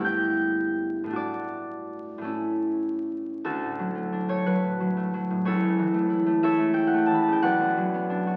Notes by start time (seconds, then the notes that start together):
Already playing: G2 B3
0.00 E4 G4
0.05 G5 G6
1.04 A2 A3
1.10 D4 F#4
1.16 D5 D6
2.18 A2 A3
2.24 C#4 E4
3.44 D2 D4 F#4 A4
3.63 A2
3.79 F#3
3.95 A3
4.12 D4
4.28 A3 C#5
4.46 F#3 B4
4.64 A2
4.80 F#3
4.97 A3
5.14 F#3
5.30 A2
5.45 C#2 E4 A4 C#5
5.62 C#3
5.79 E3
5.94 A3
6.10 E4
6.26 A3
6.43 E4 A4 C#5 E5
6.60 A3
6.74 E4 G5
6.87 F#5
6.93 A3
6.98 G5
7.07 A5
7.11 E3 B5
7.22 A5
7.28 C#3
7.33 G5
7.42 B1 B4 D5 F#5
7.60 F#2
7.77 F#3
7.94 B3
8.10 D4
8.27 F#4